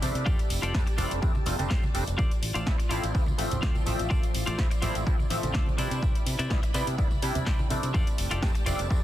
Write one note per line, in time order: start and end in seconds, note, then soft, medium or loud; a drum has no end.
0.00 0.11 C3 medium
0.00 0.71 G3 medium
0.00 0.72 A3 medium
0.00 0.72 C4 medium
0.00 0.72 D4 medium
0.00 0.24 E4 medium
0.00 7.91 D5 medium
0.00 0.23 B5 medium
0.00 muted clean electric guitar stroke soft
0.00 open hi-hat loud
0.00 tambourine medium
0.00 low conga medium
0.15 0.23 C3 loud
0.15 closed hi-hat medium
0.15 tambourine soft
0.26 0.35 F2 loud
0.26 0.39 F4 loud
0.26 0.39 G4 loud
0.26 2.17 G4 medium
0.26 0.39 A4 medium
0.26 0.39 D5 loud
0.26 2.17 A5 medium
0.26 kick loud
0.26 tambourine medium
0.39 muted fingered electric bass stroke soft
0.39 closed hi-hat soft
0.39 tambourine soft
0.50 0.59 F1 medium
0.50 muted clean electric guitar stroke soft
0.50 open hi-hat loud
0.50 tambourine medium
0.62 0.71 F1 medium
0.62 0.74 F4 medium
0.62 0.74 G4 medium
0.62 0.74 A4 medium
0.62 0.75 D5 medium
0.62 closed hi-hat medium
0.74 0.84 G3 medium
0.74 0.84 A3 medium
0.74 0.84 C4 medium
0.74 0.84 D4 medium
0.74 kick loud
0.74 snare loud
0.74 tambourine soft
0.87 muted clean electric guitar stroke loud
0.87 closed hi-hat medium
0.87 tambourine soft
0.98 1.07 F1 medium
0.98 1.20 G3 medium
0.98 1.20 A3 medium
0.98 1.20 C4 medium
0.98 1.20 D4 medium
0.98 1.11 F4 medium
0.98 1.11 G4 medium
0.98 1.11 A4 medium
0.98 1.11 D5 medium
0.98 open hi-hat loud
0.98 tambourine loud
0.98 low conga medium
1.11 1.19 F1 medium
1.11 closed hi-hat medium
1.11 tambourine soft
1.22 1.35 F2 medium
1.22 1.32 G3 medium
1.22 1.32 A3 medium
1.22 1.32 C4 medium
1.22 1.32 D4 medium
1.22 muted clean electric guitar stroke soft
1.22 kick loud
1.22 tambourine medium
1.35 muted clean electric guitar stroke soft
1.35 muted fingered electric bass stroke soft
1.35 tambourine soft
1.35 high conga medium
1.46 1.55 F1 loud
1.46 1.56 G3 medium
1.46 1.56 A3 medium
1.46 1.56 C4 medium
1.46 1.56 F4 loud
1.46 open hi-hat loud
1.46 tambourine medium
1.58 1.67 F1 loud
1.58 1.73 G3 medium
1.58 1.73 A3 medium
1.58 1.73 C4 medium
1.58 1.73 D4 medium
1.58 closed hi-hat medium
1.58 tambourine soft
1.58 high conga medium
1.70 1.79 F2 loud
1.70 1.83 F4 medium
1.70 1.83 G4 medium
1.70 1.83 A4 medium
1.70 1.83 C5 loud
1.70 kick loud
1.70 snare loud
1.70 tambourine medium
1.83 tambourine soft
1.83 high conga medium
1.94 2.03 F1 loud
1.94 2.04 G3 medium
1.94 2.04 A3 medium
1.94 2.04 C4 medium
1.94 2.04 D4 medium
1.94 muted clean electric guitar stroke soft
1.94 open hi-hat loud
1.94 tambourine medium
2.07 2.15 F1 medium
2.07 closed hi-hat medium
2.07 tambourine soft
2.18 5.75 F3 medium
2.18 2.31 F4 loud
2.18 2.31 A4 loud
2.18 2.31 C5 loud
2.18 2.31 D5 loud
2.18 5.75 C6 medium
2.18 kick loud
2.18 tambourine medium
2.31 closed hi-hat medium
2.31 tambourine soft
2.42 2.51 A1 medium
2.42 muted clean electric guitar stroke soft
2.42 open hi-hat loud
2.42 tambourine medium
2.54 2.63 A1 medium
2.54 2.66 F4 medium
2.54 2.66 A4 medium
2.54 2.67 C5 medium
2.54 2.67 D5 medium
2.54 closed hi-hat medium
2.54 tambourine soft
2.66 2.76 F3 medium
2.66 2.76 A3 medium
2.66 2.76 C4 medium
2.66 2.76 E4 medium
2.66 kick loud
2.66 snare loud
2.66 tambourine medium
2.78 muted clean electric guitar stroke loud
2.78 closed hi-hat medium
2.78 tambourine soft
2.89 2.99 A1 medium
2.89 3.12 F3 medium
2.89 3.12 A3 medium
2.89 3.12 C4 medium
2.89 3.12 E4 medium
2.89 3.03 F4 medium
2.89 3.03 A4 medium
2.89 3.03 C5 medium
2.89 3.03 D5 medium
2.89 open hi-hat loud
2.89 tambourine medium
3.03 3.11 A1 medium
3.03 closed hi-hat medium
3.03 tambourine soft
3.14 3.32 D2 loud
3.14 3.24 F3 medium
3.14 3.24 A3 medium
3.14 3.24 C4 medium
3.14 3.24 E4 medium
3.14 muted clean electric guitar stroke soft
3.14 kick loud
3.14 tambourine soft
3.26 muted clean electric guitar stroke soft
3.26 tambourine soft
3.26 high conga medium
3.38 3.48 A1 loud
3.38 3.84 F3 medium
3.38 3.84 A3 medium
3.38 3.84 C4 medium
3.38 3.84 E5 loud
3.38 open hi-hat loud
3.38 tambourine medium
3.51 3.59 A1 loud
3.51 closed hi-hat medium
3.51 tambourine soft
3.51 high conga medium
3.51 low conga medium
3.62 3.71 D2 loud
3.62 3.75 F4 medium
3.62 3.75 A4 medium
3.62 3.75 C5 medium
3.62 3.76 D5 medium
3.62 kick loud
3.62 snare loud
3.62 tambourine medium
3.75 tambourine soft
3.75 high conga medium
3.86 3.95 A1 medium
3.86 4.55 F3 medium
3.86 4.56 A3 medium
3.86 4.56 C4 medium
3.86 4.56 E5 medium
3.86 muted clean electric guitar stroke soft
3.86 open hi-hat loud
3.86 tambourine medium
3.86 low conga medium
3.99 4.07 A1 loud
3.99 closed hi-hat medium
3.99 tambourine soft
4.10 4.19 D2 loud
4.10 4.23 F4 loud
4.10 4.23 A4 medium
4.10 4.23 C5 loud
4.10 4.23 D5 loud
4.10 kick loud
4.10 tambourine soft
4.23 muted fingered electric bass stroke soft
4.23 closed hi-hat medium
4.23 tambourine soft
4.34 4.44 A1 medium
4.34 muted clean electric guitar stroke soft
4.34 open hi-hat loud
4.34 tambourine medium
4.46 4.55 A1 loud
4.46 4.58 F4 medium
4.46 4.58 A4 medium
4.46 4.58 C5 medium
4.46 4.59 D5 medium
4.46 closed hi-hat medium
4.46 tambourine soft
4.58 4.68 F3 medium
4.58 4.68 A3 medium
4.58 4.68 C4 medium
4.58 4.68 E4 medium
4.58 kick loud
4.58 snare loud
4.58 tambourine medium
4.71 muted clean electric guitar stroke loud
4.71 closed hi-hat medium
4.71 tambourine soft
4.82 4.91 A1 medium
4.82 5.04 F3 medium
4.82 5.04 A3 medium
4.82 5.04 C4 medium
4.82 5.04 E4 medium
4.82 4.95 F4 medium
4.82 4.95 A4 medium
4.82 4.95 C5 medium
4.82 4.95 D5 medium
4.82 open hi-hat loud
4.82 tambourine medium
4.82 low conga medium
4.95 5.03 A1 medium
4.95 closed hi-hat medium
4.95 tambourine soft
5.06 5.16 F3 medium
5.06 5.16 A3 medium
5.06 5.16 C4 medium
5.06 5.16 E4 loud
5.06 muted clean electric guitar stroke soft
5.06 kick loud
5.06 tambourine medium
5.19 muted clean electric guitar stroke soft
5.19 muted fingered electric bass stroke soft
5.19 tambourine soft
5.19 high conga medium
5.30 5.39 A1 loud
5.30 5.76 F3 medium
5.30 5.76 A3 medium
5.30 5.76 C4 medium
5.30 5.76 E5 loud
5.30 open hi-hat loud
5.30 tambourine medium
5.43 5.51 A1 loud
5.43 closed hi-hat medium
5.43 tambourine soft
5.43 high conga medium
5.54 5.63 D2 loud
5.54 5.67 F4 medium
5.54 5.67 A4 medium
5.54 5.67 C5 medium
5.54 5.67 D5 medium
5.54 kick loud
5.54 snare loud
5.54 tambourine medium
5.66 tambourine soft
5.66 high conga medium
5.77 5.87 C3 medium
5.77 6.47 G3 medium
5.77 6.48 D4 medium
5.77 6.17 E4 medium
5.77 7.92 E4 medium
5.77 6.48 E4 medium
5.77 6.17 B4 medium
5.77 6.18 C5 medium
5.77 6.18 D5 loud
5.77 7.92 B5 medium
5.77 open hi-hat loud
5.77 tambourine loud
5.91 5.99 C3 loud
5.91 closed hi-hat medium
5.91 tambourine soft
6.02 6.11 C2 loud
6.02 kick loud
6.02 tambourine medium
6.15 closed hi-hat medium
6.15 tambourine soft
6.26 6.35 C3 medium
6.26 muted clean electric guitar stroke soft
6.26 open hi-hat loud
6.26 tambourine loud
6.39 6.47 C3 loud
6.39 6.50 E4 medium
6.39 6.51 B4 medium
6.39 6.51 C5 medium
6.39 6.51 D5 loud
6.39 closed hi-hat medium
6.39 tambourine soft
6.50 6.59 C2 medium
6.50 6.60 G3 medium
6.50 6.60 B3 medium
6.50 6.60 D4 medium
6.50 6.60 E4 loud
6.50 kick loud
6.50 snare loud
6.50 tambourine medium
6.63 muted clean electric guitar stroke loud
6.63 closed hi-hat medium
6.63 tambourine soft
6.74 6.83 C3 loud
6.74 6.96 G3 medium
6.74 6.96 B3 medium
6.74 6.96 D4 medium
6.74 6.87 E4 medium
6.74 6.96 E4 medium
6.74 6.87 B4 medium
6.74 6.88 C5 medium
6.74 6.88 D5 medium
6.74 open hi-hat loud
6.74 tambourine loud
6.87 6.95 C3 medium
6.87 closed hi-hat medium
6.87 tambourine soft
6.98 7.15 C2 loud
6.98 7.08 G3 medium
6.98 7.08 B3 medium
6.98 7.08 D4 medium
6.98 7.08 E4 medium
6.98 muted clean electric guitar stroke soft
6.98 kick loud
6.98 tambourine medium
7.11 muted clean electric guitar stroke soft
7.11 tambourine soft
7.11 high conga medium
7.22 7.31 C3 loud
7.22 7.68 G3 medium
7.22 7.68 D4 medium
7.22 7.68 E4 loud
7.22 open hi-hat loud
7.22 tambourine loud
7.35 7.43 C3 loud
7.35 closed hi-hat medium
7.35 tambourine soft
7.35 high conga medium
7.35 low conga medium
7.46 7.55 C2 loud
7.46 7.59 E4 medium
7.46 7.59 B4 medium
7.46 7.59 C5 medium
7.46 7.60 D5 medium
7.46 kick loud
7.46 snare loud
7.46 tambourine medium
7.59 tambourine soft
7.59 high conga medium
7.70 7.79 C3 medium
7.70 8.39 G3 medium
7.70 8.40 A3 medium
7.70 8.40 C4 medium
7.70 8.40 D4 medium
7.70 muted clean electric guitar stroke soft
7.70 open hi-hat loud
7.70 tambourine loud
7.70 low conga medium
7.83 7.91 C3 loud
7.83 closed hi-hat medium
7.83 tambourine soft
7.94 8.07 F4 loud
7.94 9.04 G4 medium
7.94 8.07 G4 loud
7.94 8.07 A4 loud
7.94 9.04 D5 medium
7.94 8.08 D5 loud
7.94 9.04 A5 medium
7.94 kick loud
7.94 tambourine medium
7.94 high conga medium
8.07 closed hi-hat medium
8.07 tambourine soft
8.18 8.27 F1 medium
8.18 muted clean electric guitar stroke soft
8.18 open hi-hat loud
8.18 tambourine medium
8.31 8.39 F1 loud
8.31 8.42 F4 medium
8.31 8.42 G4 medium
8.31 8.43 A4 medium
8.31 8.43 D5 medium
8.31 closed hi-hat medium
8.31 tambourine soft
8.42 8.52 G3 medium
8.42 8.52 A3 medium
8.42 8.52 C4 medium
8.42 8.52 D4 medium
8.42 kick loud
8.42 snare loud
8.42 tambourine medium
8.55 muted clean electric guitar stroke loud
8.55 closed hi-hat medium
8.55 tambourine soft
8.66 8.75 F1 medium
8.66 8.88 G3 medium
8.66 8.88 A3 medium
8.66 8.88 C4 medium
8.66 8.88 D4 medium
8.66 8.79 F4 medium
8.66 8.79 G4 medium
8.66 8.79 A4 medium
8.66 8.79 D5 medium
8.66 open hi-hat loud
8.66 tambourine loud
8.66 low conga medium
8.79 8.87 F1 medium
8.79 closed hi-hat medium
8.79 tambourine soft
8.90 9.03 F2 loud
8.90 9.00 G3 medium
8.90 9.00 A3 medium
8.90 9.00 C4 medium
8.90 9.00 D4 loud
8.90 muted clean electric guitar stroke soft
8.90 kick loud
8.90 tambourine medium